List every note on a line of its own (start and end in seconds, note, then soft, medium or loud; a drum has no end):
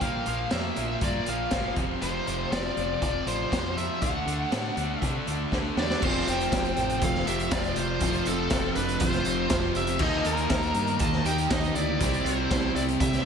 0.01 0.19 A#1 medium
0.01 0.26 A#2 medium
0.01 0.27 F3 medium
0.01 0.27 A#3 loud
0.01 0.52 F5 medium
0.01 kick medium
0.01 closed hi-hat medium
0.26 0.44 A#1 medium
0.26 0.51 A#2 medium
0.26 0.52 F3 medium
0.26 0.52 A#3 medium
0.26 closed hi-hat medium
0.51 0.70 F2 medium
0.51 0.76 A#2 medium
0.51 0.77 F3 medium
0.51 0.77 A#3 medium
0.51 0.99 E5 medium
0.51 snare loud
0.51 closed hi-hat medium
0.76 0.95 A#1 medium
0.76 1.01 A#2 medium
0.76 1.02 F3 medium
0.76 1.02 A#3 medium
0.76 closed hi-hat medium
1.01 1.19 G2 medium
1.01 1.26 A#2 medium
1.01 1.27 F3 medium
1.01 1.27 A#3 medium
1.01 1.28 D5 medium
1.01 kick loud
1.01 closed hi-hat medium
1.26 1.45 A#1 medium
1.26 1.51 A#2 medium
1.26 1.51 F3 medium
1.26 1.52 A#3 medium
1.26 1.74 F5 medium
1.26 closed hi-hat medium
1.51 1.69 G1 medium
1.51 1.75 A#2 medium
1.51 1.76 F3 medium
1.51 1.76 A#3 medium
1.51 kick medium
1.51 snare loud
1.51 closed hi-hat medium
1.76 1.94 F1 medium
1.76 2.01 F2 medium
1.76 2.01 C3 medium
1.76 2.02 F3 medium
1.76 kick loud
1.76 closed hi-hat medium
2.02 2.19 F1 medium
2.02 2.26 F2 medium
2.02 2.26 C3 medium
2.02 2.27 F3 loud
2.02 2.52 C5 medium
2.02 closed hi-hat medium
2.27 2.45 F1 medium
2.27 2.50 F2 medium
2.27 2.51 C3 medium
2.27 2.51 F3 medium
2.27 closed hi-hat medium
2.51 2.69 F1 medium
2.51 2.74 F2 medium
2.51 2.75 C3 loud
2.51 2.75 F3 loud
2.51 3.02 D5 medium
2.51 snare medium
2.51 closed hi-hat medium
2.75 2.94 F1 medium
2.75 2.99 F2 medium
2.75 3.00 C3 medium
2.75 3.00 F3 medium
2.75 closed hi-hat medium
3.00 3.19 F1 medium
3.00 3.25 F2 medium
3.00 3.26 C3 medium
3.00 3.26 F3 medium
3.00 3.28 D5 medium
3.00 kick loud
3.00 closed hi-hat medium
3.26 3.44 A1 medium
3.26 3.49 F2 medium
3.26 3.50 C3 medium
3.26 3.50 F3 medium
3.26 3.79 C5 medium
3.26 closed hi-hat medium
3.51 3.75 F2 medium
3.51 3.87 F2 medium
3.51 3.76 C3 medium
3.51 3.76 F3 medium
3.51 kick medium
3.51 snare loud
3.51 closed hi-hat medium
3.76 4.00 F2 medium
3.76 4.00 C3 medium
3.76 4.01 F3 medium
3.76 4.02 E5 medium
3.76 closed hi-hat medium
4.02 4.20 D2 medium
4.02 4.24 D3 medium
4.02 4.25 A3 medium
4.02 4.26 D4 medium
4.02 4.99 F#5 loud
4.02 kick loud
4.02 closed hi-hat medium
4.26 4.44 D2 medium
4.26 4.50 D3 medium
4.26 4.50 A3 medium
4.26 4.51 D4 medium
4.26 closed hi-hat medium
4.51 4.70 A2 medium
4.51 4.76 D3 medium
4.51 4.76 A3 medium
4.51 4.76 D4 loud
4.51 snare loud
4.51 closed hi-hat medium
4.77 4.94 D2 medium
4.77 5.01 D3 medium
4.77 5.01 A3 medium
4.77 5.02 D4 medium
4.77 closed hi-hat medium
4.99 5.20 C3 medium
4.99 5.26 D3 medium
4.99 5.26 A3 medium
4.99 5.48 E5 loud
4.99 kick loud
4.99 closed hi-hat medium
5.03 5.27 D4 medium
5.26 5.44 D2 medium
5.26 5.52 D3 medium
5.26 5.52 A3 medium
5.26 5.53 D4 medium
5.26 closed hi-hat medium
5.52 5.69 D2 medium
5.52 5.76 D3 medium
5.52 5.76 A3 medium
5.52 5.77 D4 medium
5.52 kick medium
5.52 snare medium
5.72 5.93 B3 medium
5.72 5.95 C4 medium
5.76 5.94 E2 medium
5.76 6.00 D3 medium
5.76 6.01 A3 medium
5.76 5.96 D4 medium
5.76 6.01 D4 medium
5.76 6.04 D5 medium
5.76 snare medium
5.80 5.97 E4 medium
5.80 5.99 F4 medium
5.86 6.00 G4 medium
5.86 6.02 A4 medium
5.90 6.03 B4 medium
5.90 snare medium
5.94 6.04 C5 medium
5.94 6.06 D5 medium
6.00 6.23 F1 loud
6.00 7.25 F2 loud
6.00 7.25 C3 loud
6.00 7.25 F3 loud
6.00 9.98 C4 medium
6.00 9.98 F4 medium
6.00 6.26 F4 medium
6.00 9.98 A4 medium
6.00 6.29 C5 medium
6.00 6.07 E5 medium
6.00 9.98 F5 medium
6.00 kick loud
6.00 crash loud
6.27 6.48 F1 loud
6.27 6.99 C5 medium
6.27 7.05 G5 loud
6.27 closed hi-hat medium
6.40 closed hi-hat soft
6.52 6.73 F1 medium
6.52 kick loud
6.52 snare loud
6.52 closed hi-hat medium
6.65 closed hi-hat soft
6.77 6.98 A1 medium
6.77 closed hi-hat medium
6.89 closed hi-hat soft
7.02 7.23 F1 loud
7.02 7.26 A4 medium
7.02 7.27 F5 loud
7.02 kick loud
7.02 closed hi-hat loud
7.15 snare soft
7.26 7.48 F1 medium
7.26 7.50 F2 medium
7.26 7.51 C3 medium
7.26 7.50 F3 medium
7.26 7.51 G4 medium
7.26 7.52 E5 medium
7.26 closed hi-hat medium
7.39 closed hi-hat soft
7.51 7.72 F1 medium
7.51 7.99 F2 medium
7.51 8.01 C3 medium
7.51 8.01 F3 medium
7.51 7.76 F4 medium
7.51 7.78 D5 medium
7.51 kick loud
7.51 snare loud
7.51 closed hi-hat loud
7.64 closed hi-hat soft
7.76 7.98 F1 medium
7.76 8.24 F4 medium
7.76 8.27 C5 loud
7.76 closed hi-hat medium
8.00 8.22 F1 loud
8.00 9.24 F2 loud
8.00 9.25 C3 loud
8.00 9.24 F3 medium
8.00 kick loud
8.00 closed hi-hat loud
8.13 closed hi-hat soft
8.26 8.47 F1 medium
8.26 8.74 C4 medium
8.26 8.75 A4 medium
8.26 closed hi-hat medium
8.50 8.72 F1 medium
8.50 kick loud
8.50 snare loud
8.50 closed hi-hat medium
8.75 8.97 F1 medium
8.75 9.00 D4 medium
8.75 9.01 B4 medium
8.75 closed hi-hat medium
8.89 closed hi-hat soft
9.00 9.22 F1 loud
9.00 9.73 F4 medium
9.00 9.78 C5 loud
9.00 kick loud
9.00 closed hi-hat loud
9.12 snare soft
9.12 closed hi-hat soft
9.25 9.47 F1 medium
9.25 9.48 F2 medium
9.25 9.50 C3 medium
9.25 9.49 F3 medium
9.25 closed hi-hat medium
9.49 9.72 F1 medium
9.49 9.99 F2 medium
9.49 9.99 C3 medium
9.49 10.00 F3 medium
9.49 kick loud
9.49 snare loud
9.49 closed hi-hat loud
9.75 9.97 F1 medium
9.75 9.99 G4 medium
9.75 10.00 E5 loud
9.75 closed hi-hat medium
9.87 closed hi-hat medium
9.99 10.21 D#2 loud
9.99 11.24 D#3 medium
9.99 11.24 A#3 medium
9.99 11.99 A#3 medium
9.99 10.24 D#4 loud
9.99 11.99 D#4 medium
9.99 11.25 D#4 loud
9.99 11.99 G4 medium
9.99 11.98 D#5 medium
9.99 10.27 D#5 loud
9.99 kick loud
9.99 crash medium
10.25 10.47 D#2 medium
10.25 10.97 A#4 medium
10.25 11.03 A#5 loud
10.25 closed hi-hat medium
10.37 closed hi-hat soft
10.50 10.71 D#2 medium
10.50 kick loud
10.50 snare loud
10.50 closed hi-hat medium
10.63 closed hi-hat soft
10.74 10.96 G2 loud
10.74 closed hi-hat medium
10.87 closed hi-hat soft
10.99 11.22 D#2 loud
10.99 11.25 D#5 loud
10.99 11.25 A5 loud
10.99 kick loud
10.99 closed hi-hat loud
11.13 snare soft
11.24 11.46 D#2 medium
11.24 11.50 A#3 medium
11.24 11.49 D#4 medium
11.24 11.49 G4 medium
11.24 11.52 G5 medium
11.24 closed hi-hat medium
11.28 11.49 D#3 medium
11.38 closed hi-hat soft
11.50 11.72 D#2 medium
11.50 11.99 D#3 medium
11.50 12.00 A#3 medium
11.50 11.74 D#4 medium
11.50 12.00 D#4 medium
11.50 11.74 D#5 medium
11.50 kick loud
11.50 snare loud
11.50 closed hi-hat loud
11.63 closed hi-hat soft
11.75 11.96 D2 medium
11.75 12.23 E4 medium
11.75 12.27 D5 loud
11.75 closed hi-hat medium
12.00 12.22 C2 loud
12.00 13.23 C3 loud
12.00 13.24 G3 loud
12.00 13.25 C4 medium
12.00 13.24 C4 loud
12.00 13.25 E4 medium
12.00 13.25 G4 medium
12.00 13.25 E5 medium
12.00 kick loud
12.00 closed hi-hat loud
12.13 closed hi-hat soft
12.25 12.46 C2 medium
12.25 12.73 E4 medium
12.25 12.72 C5 loud
12.25 closed hi-hat medium
12.51 12.72 C2 medium
12.51 kick loud
12.51 snare loud
12.51 closed hi-hat loud
12.75 12.96 C2 medium
12.75 12.84 E4 medium
12.75 12.82 D5 medium
12.75 closed hi-hat medium
12.88 closed hi-hat soft
13.00 13.21 C2 loud
13.00 13.25 G4 medium
13.00 13.25 E5 medium
13.00 kick loud
13.00 closed hi-hat loud
13.13 snare soft
13.13 closed hi-hat medium